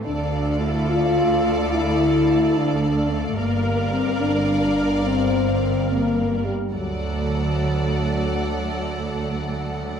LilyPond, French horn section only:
\new Staff \with { instrumentName = "French horn section" } { \time 6/8 \key d \minor \tempo 4. = 72 d'4 e'8 f'4. | e'4. d'4 a8 | bes4 c'8 d'4. | c'4. bes4 g8 |
fis2.~ | fis2. | }